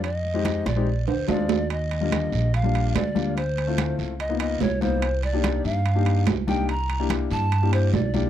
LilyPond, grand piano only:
\new Staff \with { instrumentName = "Grand piano" } { \time 4/4 \key bes \major \tempo 4 = 144 r8. <aes c' ees' g'>8. r16 <aes c' ees' g'>16 r4 <aes c' d' f'>8. r16 | \key ees \major r8. <d g bes f'>4 r8 <g bes d' f'>8. r8 <g bes d' f'>8 | r8. <a c' fes' f'>4 r8 <bes ces' ees' f'>8. r8 <bes ces' ees' f'>8 | r8. <bes d' ees' g'>4 r8 <bes d' ees' g'>8. r8 <bes d' ees' g'>8 |
r8. <bes d' e' g'>4 r8 <bes d' e' g'>8. r8 <bes d' e' g'>8 | }